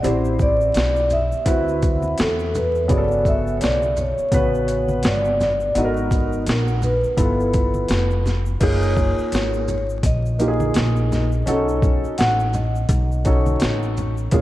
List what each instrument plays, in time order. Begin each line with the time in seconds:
0.03 upright bass A1, grand piano C4 E4 G4 C5, vibraphone C5, closed hi-hat, shaker
0.25 shaker
0.39 vibraphone D5, kick, low conga, shaker
0.61 shaker
0.74 upright bass B1, snare, closed hi-hat, shaker
0.96 shaker
1.10 vibraphone E5, low conga, shaker
1.32 muted upright bass stroke, shaker
1.45 upright bass D2, grand piano C4 E4 F#4 B4, kick, closed hi-hat, high conga, shaker
1.68 shaker
1.82 kick, closed hi-hat, shaker
2.02 high conga, shaker
2.18 upright bass E2, vibraphone A4, snare, closed hi-hat, shaker
2.39 shaker
2.55 vibraphone B4, low conga, shaker
2.75 shaker
2.85 grand piano C#3 B3, vibraphone C#5, closed hi-hat
2.90 upright bass G1, grand piano F#4 G#4, vibraphone D5, kick, shaker
2.97 grand piano A4
3.11 shaker
3.25 vibraphone E5, kick, low conga, shaker
3.47 shaker
3.57 vibraphone C#5, closed hi-hat
3.62 upright bass B1, vibraphone D5, snare, shaker
3.82 shaker
3.97 vibraphone C#5, low conga, shaker
4.18 muted upright bass stroke, shaker
4.32 upright bass A1, grand piano C#3 B3 F#4 B4, kick, closed hi-hat, high conga, shaker
4.55 shaker
4.68 closed hi-hat, shaker
4.89 high conga, shaker
5.03 upright bass G1, vibraphone D5, snare, closed hi-hat, shaker
5.25 shaker
5.41 vibraphone D5, snare, low conga, shaker
5.60 shaker
5.75 upright bass G#1, grand piano B3 D#4 F#4 A4, vibraphone D#5, closed hi-hat, shaker
5.84 grand piano A#4
5.97 shaker
6.11 kick, closed hi-hat, low conga, shaker
6.33 shaker
6.47 upright bass A#1, vibraphone A#4, snare, closed hi-hat, shaker
6.68 shaker
6.82 vibraphone B4, low conga, shaker
7.04 muted upright bass stroke, shaker
7.17 upright bass G1, grand piano B3 E4 F4 A4, kick, closed hi-hat, high conga, shaker
7.40 shaker
7.54 kick, closed hi-hat, shaker
7.74 high conga, shaker
7.89 upright bass F1, snare, closed hi-hat, shaker
8.11 shaker
8.26 snare, low conga, shaker
8.46 shaker
8.60 upright bass F#1, grand piano A#3 D#4 F4 G#4, vibraphone C#5, kick, closed hi-hat, crash, shaker
8.82 shaker
8.97 kick, low conga, shaker
9.18 muted upright bass stroke, shaker
9.32 upright bass G#1, snare, closed hi-hat, shaker
9.54 shaker
9.68 vibraphone C#5, low conga, shaker
9.90 shaker
10.03 upright bass A#1, vibraphone D#5, kick, closed hi-hat, high conga, shaker
10.26 shaker
10.39 grand piano A#3 D#4 F4 G4, closed hi-hat, shaker
10.48 grand piano G#4
10.60 high conga, shaker
10.74 upright bass A#1, snare, closed hi-hat, shaker
10.96 shaker
11.12 vibraphone D#5, snare, low conga, shaker
11.32 shaker
11.46 upright bass B1, grand piano C#4 D#4 F#4 A4, closed hi-hat, shaker
11.68 shaker
11.82 kick, low conga, shaker
12.04 muted upright bass stroke, shaker
12.18 upright bass A1, vibraphone F#5, snare, closed hi-hat, shaker
12.40 shaker
12.53 vibraphone D#5, low conga, shaker
12.75 shaker
12.89 upright bass B1, kick, closed hi-hat, high conga, shaker
13.12 shaker
13.25 grand piano C#4 D#4 F#4 A4, kick, closed hi-hat, shaker
13.46 high conga, shaker
13.60 upright bass A1, snare, closed hi-hat, shaker
13.83 shaker
13.97 low conga, shaker
14.17 shaker
14.31 upright bass A#1, grand piano A#3 C#4 F4 G#4, vibraphone C#5, kick, closed hi-hat, shaker